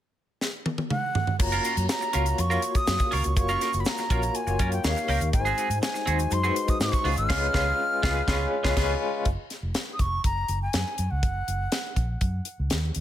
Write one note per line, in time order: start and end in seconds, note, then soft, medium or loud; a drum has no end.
0.41 snare medium
0.66 high tom medium
0.78 high tom medium
0.90 1.36 F#5 medium
0.90 mid tom medium
1.15 floor tom medium
1.27 floor tom medium
1.39 1.58 F#1 medium
1.39 2.08 A#3 medium
1.39 2.08 F4 medium
1.39 2.08 F#4 medium
1.39 2.08 C#5 medium
1.39 1.86 A#5 medium
1.39 muted clean electric guitar stroke soft
1.39 kick loud
1.39 crash medium
1.39 shaker medium
1.52 1.63 C#4 medium
1.52 1.64 F4 medium
1.52 1.65 A#4 medium
1.52 closed hi-hat soft
1.52 shaker soft
1.64 1.75 C#4 medium
1.64 1.76 F4 medium
1.64 1.75 A#4 medium
1.64 closed hi-hat medium
1.64 shaker soft
1.77 1.86 F#2 medium
1.77 muted clean electric guitar stroke soft
1.77 closed hi-hat soft
1.77 shaker soft
1.89 2.41 A#5 medium
1.89 muted clean electric guitar stroke soft
1.89 snare loud
1.89 shaker medium
2.01 muted clean electric guitar stroke soft
2.01 shaker medium
2.13 2.32 C#2 medium
2.13 2.48 A#3 medium
2.13 2.27 C#4 medium
2.13 2.48 F4 medium
2.13 2.26 F4 medium
2.13 2.48 F#4 medium
2.13 2.25 A#4 medium
2.13 2.48 C#5 medium
2.13 closed hi-hat medium
2.26 muted clean electric guitar stroke soft
2.26 closed hi-hat soft
2.26 shaker soft
2.38 2.57 F2 medium
2.38 2.78 C#6 medium
2.38 muted clean electric guitar stroke soft
2.38 closed hi-hat medium
2.38 shaker medium
2.50 3.30 A#3 medium
2.50 2.62 C#4 medium
2.50 3.30 F4 medium
2.50 2.63 F4 medium
2.50 3.31 F#4 medium
2.50 2.63 A#4 medium
2.50 3.31 C#5 medium
2.50 shaker soft
2.62 muted clean electric guitar stroke soft
2.62 closed hi-hat medium
2.62 shaker soft
2.75 3.15 D#6 medium
2.75 muted clean electric guitar stroke soft
2.75 kick medium
2.75 closed hi-hat soft
2.75 shaker soft
2.87 2.97 F#2 medium
2.87 snare loud
2.87 shaker medium
2.99 muted clean electric guitar stroke soft
2.99 kick loud
2.99 closed hi-hat soft
2.99 shaker soft
3.11 3.22 C#2 medium
3.11 3.26 C#4 medium
3.11 3.24 F4 medium
3.11 3.23 A#4 medium
3.11 3.37 C#6 medium
3.11 open hi-hat medium
3.24 3.34 C#2 medium
3.24 muted clean electric guitar stroke soft
3.24 closed hi-hat soft
3.24 shaker soft
3.36 3.55 F#1 loud
3.36 4.05 A#3 medium
3.36 4.05 F4 medium
3.36 4.05 F#4 medium
3.36 4.06 C#5 medium
3.36 3.82 C#6 loud
3.36 muted clean electric guitar stroke soft
3.36 kick loud
3.36 closed hi-hat medium
3.36 shaker medium
3.49 3.59 C#4 medium
3.49 3.61 F4 medium
3.49 3.61 A#4 medium
3.49 shaker soft
3.61 3.72 C#4 medium
3.61 3.73 F4 medium
3.61 3.72 A#4 medium
3.61 snare soft
3.61 closed hi-hat medium
3.61 shaker soft
3.73 3.83 F#1 medium
3.73 muted clean electric guitar stroke soft
3.73 closed hi-hat soft
3.73 shaker medium
3.80 3.89 B5 medium
3.85 4.37 A#5 medium
3.85 muted clean electric guitar stroke soft
3.85 snare loud
3.85 shaker medium
3.97 muted clean electric guitar stroke soft
3.97 snare soft
3.97 shaker medium
4.10 4.28 A#1 medium
4.10 4.44 A#3 medium
4.10 4.24 C#4 medium
4.10 4.45 F4 medium
4.10 4.23 F4 medium
4.10 4.45 F#4 medium
4.10 4.22 A#4 medium
4.10 4.45 C#5 medium
4.10 kick medium
4.10 closed hi-hat medium
4.22 muted clean electric guitar stroke soft
4.22 closed hi-hat soft
4.22 shaker soft
4.35 4.72 G#5 medium
4.35 closed hi-hat medium
4.35 shaker medium
4.47 4.56 F#1 medium
4.47 4.83 A#3 medium
4.47 4.84 F4 medium
4.47 4.84 F#4 medium
4.47 4.84 C#5 medium
4.47 muted clean electric guitar stroke soft
4.47 closed hi-hat soft
4.47 shaker soft
4.59 4.78 F#2 medium
4.59 4.73 C#4 medium
4.59 4.72 F4 medium
4.59 4.71 A#4 medium
4.59 kick medium
4.59 closed hi-hat medium
4.59 shaker soft
4.72 4.86 G5 medium
4.72 muted clean electric guitar stroke soft
4.72 closed hi-hat soft
4.72 shaker soft
4.84 4.93 D#2 loud
4.84 5.30 A#3 medium
4.84 5.30 D#4 medium
4.84 5.30 G4 medium
4.84 5.30 C#5 medium
4.84 5.32 F5 medium
4.84 muted clean electric guitar stroke soft
4.84 snare loud
4.84 shaker medium
4.96 muted clean electric guitar stroke soft
4.96 closed hi-hat soft
4.96 shaker soft
5.08 5.17 C#2 medium
5.08 5.22 C#4 medium
5.08 5.21 G4 medium
5.08 5.20 A#4 medium
5.08 open hi-hat medium
5.21 5.30 D#2 medium
5.21 muted clean electric guitar stroke medium
5.21 closed hi-hat soft
5.21 shaker soft
5.33 5.51 G#1 medium
5.33 6.01 G#3 medium
5.33 6.01 D#4 medium
5.33 6.02 F#4 medium
5.33 5.39 A#4 medium
5.33 5.79 G#5 loud
5.33 muted clean electric guitar stroke soft
5.33 kick loud
5.33 closed hi-hat medium
5.33 shaker medium
5.40 6.05 C5 medium
5.45 5.56 C4 medium
5.45 5.58 F#4 medium
5.45 5.58 G#4 medium
5.45 closed hi-hat soft
5.45 shaker soft
5.58 5.69 C4 medium
5.58 5.69 F#4 medium
5.58 5.69 G#4 medium
5.58 closed hi-hat medium
5.58 shaker soft
5.70 5.79 G#2 medium
5.70 muted clean electric guitar stroke soft
5.70 closed hi-hat soft
5.70 shaker medium
5.82 6.34 G#5 medium
5.82 muted clean electric guitar stroke soft
5.82 snare loud
5.82 shaker medium
5.94 muted clean electric guitar stroke medium
5.94 snare soft
5.94 shaker medium
6.06 6.25 D#2 medium
6.06 6.41 G#3 medium
6.06 6.20 C4 medium
6.06 6.41 D#4 medium
6.06 6.19 F#4 medium
6.06 6.41 F#4 medium
6.06 6.18 G#4 medium
6.06 6.42 C5 medium
6.06 closed hi-hat medium
6.19 muted clean electric guitar stroke medium
6.19 closed hi-hat soft
6.19 shaker medium
6.31 6.49 F#2 medium
6.31 6.71 C6 loud
6.31 muted clean electric guitar stroke soft
6.31 closed hi-hat medium
6.31 shaker medium
6.43 7.03 G#3 medium
6.43 6.54 C4 medium
6.43 7.05 D#4 medium
6.43 6.55 F#4 medium
6.43 7.05 F#4 medium
6.43 6.56 G#4 medium
6.43 6.50 B4 medium
6.43 shaker soft
6.51 7.09 C5 medium
6.56 muted clean electric guitar stroke soft
6.56 closed hi-hat medium
6.56 shaker soft
6.68 6.81 D#6 medium
6.68 muted clean electric guitar stroke medium
6.68 kick medium
6.68 closed hi-hat soft
6.68 shaker soft
6.80 6.89 G#2 loud
6.80 7.15 C#6 loud
6.80 snare loud
6.80 shaker medium
6.92 muted clean electric guitar stroke soft
6.92 kick medium
6.92 closed hi-hat soft
6.92 shaker soft
7.04 7.14 C#2 loud
7.04 7.28 G#3 medium
7.04 7.19 B3 medium
7.04 7.28 C#4 medium
7.04 7.17 F4 medium
7.04 7.29 F4 medium
7.04 7.16 G#4 medium
7.04 7.29 B4 medium
7.04 open hi-hat medium
7.17 7.26 G#1 medium
7.17 8.73 F6 loud
7.17 muted clean electric guitar stroke soft
7.17 closed hi-hat soft
7.17 shaker soft
7.29 7.46 G#3 medium
7.29 7.47 B3 medium
7.29 7.46 C#4 loud
7.29 7.46 F4 loud
7.29 7.46 F4 medium
7.29 7.46 G#4 medium
7.29 7.47 B4 medium
7.29 kick loud
7.29 snare loud
7.29 crash medium
7.53 7.71 C#2 loud
7.53 7.70 G#3 medium
7.53 7.70 B3 loud
7.53 7.71 C#4 medium
7.53 7.71 F4 medium
7.53 7.71 G#4 loud
7.53 7.71 B4 medium
7.53 kick loud
7.53 snare loud
8.03 8.20 C#2 medium
8.03 8.20 G#3 medium
8.03 8.20 B3 medium
8.03 8.20 C#4 medium
8.03 8.20 F4 medium
8.03 8.21 G#4 loud
8.03 8.20 B4 medium
8.03 kick loud
8.03 snare loud
8.27 8.44 C#2 loud
8.27 8.44 G#3 medium
8.27 8.44 B3 medium
8.27 8.44 C#4 medium
8.27 8.45 F4 loud
8.27 8.45 G#4 loud
8.27 8.45 B4 medium
8.27 kick loud
8.27 snare loud
8.34 8.48 F4 medium
8.63 8.75 C#2 loud
8.63 8.75 G#3 medium
8.63 8.74 B3 medium
8.63 8.75 C#4 medium
8.63 8.75 F4 medium
8.63 8.75 G#4 medium
8.63 8.75 B4 medium
8.63 kick loud
8.63 snare medium
8.71 8.78 F4 loud
8.77 8.94 C#2 loud
8.77 8.94 G#3 medium
8.77 8.93 B3 loud
8.77 8.94 C#4 loud
8.77 8.94 F4 medium
8.77 8.94 G#4 medium
8.77 8.94 B4 loud
8.77 kick loud
8.77 snare medium
8.77 crash medium
8.84 8.97 F4 medium
9.25 9.35 F#1 medium
9.25 kick medium
9.25 closed hi-hat medium
9.50 snare soft
9.50 closed hi-hat medium
9.63 9.72 F1 medium
9.74 snare loud
9.74 closed hi-hat medium
9.93 10.02 D#6 medium
9.99 10.18 F1 medium
9.99 10.24 C#6 medium
9.99 kick medium
9.99 closed hi-hat medium
10.24 10.42 F#1 medium
10.24 10.59 A#5 medium
10.24 kick medium
10.24 closed hi-hat medium
10.48 10.67 F#1 medium
10.48 closed hi-hat medium
10.62 11.12 G#5 medium
10.73 10.83 F#2 medium
10.73 snare loud
10.73 closed hi-hat medium
10.98 11.07 F#2 medium
10.98 closed hi-hat medium
11.11 11.20 C#2 medium
11.11 12.09 F#5 medium
11.23 11.41 F#1 medium
11.23 kick loud
11.23 closed hi-hat medium
11.48 11.66 F#1 medium
11.48 closed hi-hat medium
11.72 snare loud
11.72 closed hi-hat medium
11.96 12.15 A#1 medium
11.96 kick medium
11.96 closed hi-hat medium
12.21 12.39 F#2 medium
12.21 kick medium
12.21 closed hi-hat medium
12.45 closed hi-hat medium
12.59 12.68 C#2 medium
12.70 12.89 D#2 medium
12.70 snare medium
12.70 closed hi-hat medium
12.95 13.01 D#2 medium
12.95 closed hi-hat medium